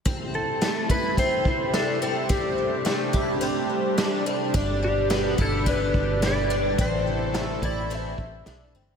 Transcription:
<<
  \new Staff \with { instrumentName = "Electric slide guitar" } { \time 4/4 \key a \minor \tempo 4 = 107 r8 a'4 b'8 c''4 a'8 a'8 | g'2.~ g'8 r8 | r8 g'4 a'8 b'4 d''4 | c''4. d''8 e''4. r8 | }
  \new Staff \with { instrumentName = "Twelve-string acoustic guitar" } { \time 4/4 \key a \minor c'4 a8 e'8 c'4 d'8 c'8 | c'4 a8 e'8 c'4 d'8 c'8 | d'4 b8 e'8 d'4 e'8 d'8 | c'4 a8 e'8 c'4 d'8 c'8 | }
  \new Staff \with { instrumentName = "Analog synth pad" } { \time 4/4 \key a \minor << { <c g a g'>1~ | <c g a g'>1 | <b, d g'>1 | <c e a a'>1 | } \\ { e'1 | d'1~ | d'1 | e'1 | } >> }
  \new Staff \with { instrumentName = "Fingered electric bass" } { \clef bass \time 4/4 \key a \minor r1 | r1 | g,,4. g,,4 g,,4. | a,,4. a,,4 a,,8 b,,8 g,,8 | }
  \new DrumStaff \with { instrumentName = "Drums" } \drummode { \time 4/4 <hh bd>4 <hh sn>8 bd8 <hh bd>8 bd8 <hh sn>4 | <hh bd>4 <hh sn>8 bd8 hh4 <hh sn>4 | <hh bd>4 <hh sn>8 bd8 <hh bd>8 bd8 <hh sn>4 | <hh bd>4 <hh sn>8 bd8 hh8 bd8 <hh sn>4 | }
>>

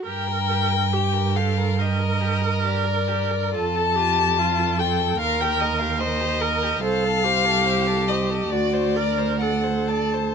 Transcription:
<<
  \new Staff \with { instrumentName = "Violin" } { \time 4/4 \key g \minor \tempo 4 = 70 g''4. f''8 ees''4 d''4 | a''4. g''8 f''16 g''16 ees''16 f''16 ees''4 | f''4. ees''8 d''4 fis''8 a''8 | }
  \new Staff \with { instrumentName = "Violin" } { \time 4/4 \key g \minor g'16 bes'16 g'16 bes'16 g'16 bes'16 g'16 bes'16 g'16 bes'16 g'16 bes'16 g'16 bes'16 g'16 bes'16 | f'16 a'16 f'16 a'16 f'16 a'16 f'16 a'16 bes'16 g'16 bes'16 g'16 bes'16 g'16 bes'16 g'16 | c''16 a'16 c''16 a'16 c''16 a'16 c''16 a'16 d''16 c''16 d''16 c''16 d''16 c''16 d''16 c''16 | }
  \new Staff \with { instrumentName = "Viola" } { \time 4/4 \key g \minor bes'4 g'8 a'8 bes'2 | a'8 g'8 f'8 a'8 bes'4 c''8 bes'8 | a'8 g'4. fis'8 bes'8 a'4 | }
  \new Staff \with { instrumentName = "Cello" } { \clef bass \time 4/4 \key g \minor g,1 | f,2 ees,2 | c,2 d,2 | }
>>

